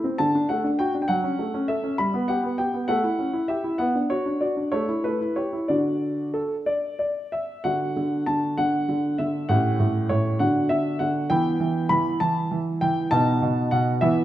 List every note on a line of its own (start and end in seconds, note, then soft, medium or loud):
0.04 0.19 C4 soft
0.18 0.34 D3 medium
0.18 0.46 A5 medium
0.35 0.51 D4 soft
0.49 0.66 A3 soft
0.49 0.67 F#5 medium
0.64 0.80 D4 soft
0.79 0.96 F#4 soft
0.79 0.93 G5 medium
0.95 1.10 D4 soft
1.02 1.09 G5 medium
1.08 1.24 F#3 medium
1.08 1.64 F#5 medium
1.24 1.40 C#4 soft
1.39 1.55 A3 soft
1.54 1.70 C#4 soft
1.68 1.85 A4 soft
1.68 1.96 E5 medium
1.84 1.99 C#4 soft
1.98 2.14 G3 medium
1.98 2.26 B5 medium
2.14 2.30 B3 soft
2.28 2.45 G4 soft
2.28 2.58 F#5 medium
2.44 2.60 B3 soft
2.58 2.75 G4 soft
2.58 2.88 G5 medium
2.74 2.89 B3 soft
2.88 3.03 A3 medium
2.88 3.44 F#5 medium
3.04 3.19 E4 soft
3.19 3.35 C#4 soft
3.33 3.49 E4 soft
3.48 3.65 G4 soft
3.48 3.76 E5 medium
3.64 3.79 E4 soft
3.78 3.94 B3 medium
3.78 3.97 F#5 medium
3.95 4.11 D4 soft
4.10 4.27 F#4 soft
4.10 4.41 C#5 medium
4.26 4.42 D4 soft
4.41 4.58 F#4 soft
4.41 4.72 D5 soft
4.57 4.73 D4 soft
4.72 4.88 A3 soft
4.72 5.04 C#5 medium
4.89 5.05 E4 soft
5.04 5.21 A3 soft
5.04 5.36 B4 medium
5.21 5.37 E4 soft
5.36 5.53 G4 soft
5.36 5.68 C#5 medium
5.53 5.69 E4 soft
5.68 6.38 D3 soft
5.68 6.48 D4 soft
5.68 6.47 F#4 soft
5.68 6.27 D5 soft
6.34 6.53 A4 medium
6.66 6.98 D5 medium
6.99 7.32 D5 soft
7.32 7.64 E5 medium
7.64 7.95 D3 soft
7.64 9.46 D4 soft
7.64 9.46 F#4 soft
7.64 8.22 F#5 medium
7.96 8.26 D3 soft
8.26 8.57 D3 soft
8.26 8.57 A5 medium
8.58 8.87 D3 soft
8.58 9.19 F#5 medium
8.89 9.18 D3 soft
9.18 9.49 D3 soft
9.18 9.46 E5 medium
9.49 9.78 A2 medium
9.49 10.36 C#4 soft
9.49 10.36 G4 soft
9.49 10.10 F#5 medium
9.80 10.09 A2 soft
10.09 10.40 A2 soft
10.09 10.40 C#5 medium
10.39 10.69 D3 medium
10.39 11.27 D4 soft
10.39 11.27 F#4 soft
10.39 10.70 F#5 medium
10.69 10.99 D3 soft
10.69 10.97 E5 medium
10.99 11.30 D3 soft
10.99 11.30 F#5 medium
11.30 11.59 E3 medium
11.30 13.07 B3 soft
11.30 13.08 E4 soft
11.30 11.86 G5 medium
11.60 11.89 E3 soft
11.89 12.19 E3 medium
11.89 12.17 B5 medium
12.20 12.50 E3 soft
12.20 12.57 A5 medium
12.51 12.81 E3 soft
12.81 13.11 E3 soft
12.81 13.11 G5 medium
13.11 13.41 B2 medium
13.11 13.98 B3 soft
13.11 13.98 D#4 soft
13.11 13.72 A5 medium
13.42 13.71 B2 medium
13.71 14.01 B2 medium
13.71 13.89 F#5 medium
14.01 14.24 E3 medium
14.01 14.24 B3 soft
14.01 14.24 E4 soft
14.01 14.19 E5 medium